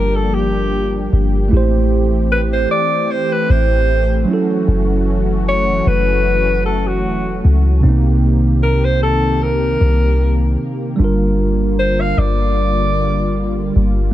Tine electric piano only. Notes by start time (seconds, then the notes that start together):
Already playing: G3 D4 F4 A#4
1.48 A3 E4
1.54 G4 C5
4.25 F#3 C#4
4.30 E4 A4
7.80 C3 C4
7.86 A#3 D#4
10.96 G3 D4
11.01 F4 A#4